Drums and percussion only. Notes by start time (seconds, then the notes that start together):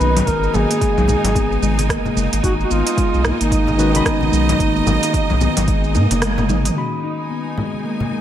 0.01 shaker
0.17 open hi-hat, low conga, shaker
0.27 kick, open hi-hat, shaker
0.43 shaker
0.54 low conga, shaker
0.71 open hi-hat, shaker
0.81 kick, open hi-hat, shaker
0.98 low conga, shaker
1.08 low conga, shaker
1.24 open hi-hat, high conga, low conga, shaker
1.35 kick, open hi-hat, shaker
1.52 shaker
1.63 high conga, shaker
1.78 open hi-hat, high conga, shaker
1.89 kick, cross-stick, open hi-hat, shaker
2.05 high conga, low conga, shaker
2.15 high conga, shaker
2.33 open hi-hat, shaker
2.43 kick, open hi-hat, shaker
2.60 shaker
2.71 shaker
2.87 open hi-hat, shaker
2.97 kick, open hi-hat, shaker
3.14 shaker
3.25 cross-stick, low conga, shaker
3.41 open hi-hat, high conga, shaker
3.51 kick, open hi-hat, shaker
3.67 high bongo, high conga, low conga, shaker
3.79 shaker
3.94 open hi-hat, high conga, shaker
4.06 kick, cross-stick, open hi-hat, shaker
4.21 high conga, shaker
4.33 shaker
4.49 open hi-hat, low conga, shaker
4.60 kick, open hi-hat, shaker
4.76 shaker
4.87 high bongo, low conga, shaker
5.03 open hi-hat, high bongo, shaker
5.14 kick, open hi-hat, shaker
5.30 low conga, shaker
5.41 high bongo, low conga, shaker
5.57 open hi-hat, high conga, low conga, shaker
5.68 kick, open hi-hat, shaker
5.84 shaker
5.95 high tom, high conga, shaker
6.11 open hi-hat, high conga, shaker
6.22 cross-stick, open hi-hat, mid tom, shaker
6.38 mid tom, high conga, low conga, shaker
6.49 mid tom, high conga, shaker
6.65 mid tom, open hi-hat, shaker
7.58 low conga
7.73 high conga
8.00 high bongo, high conga, low conga